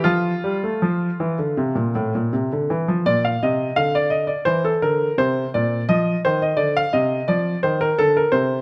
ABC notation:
X:1
M:4/4
L:1/16
Q:1/4=85
K:F
V:1 name="Grand piano"
F12 z4 | [K:Bb] d f e2 f d e d c A B2 c2 d2 | e2 c e d f e2 d2 c B A B c2 |]
V:2 name="Grand piano" clef=bass
F,2 G, A, F,2 E, D, C, B,, A,, B,, C, D, E, F, | [K:Bb] B,,2 C,2 D,4 =E,2 D,2 C,2 B,,2 | F,2 E,2 D,2 C,2 F,2 E,2 D,2 C,2 |]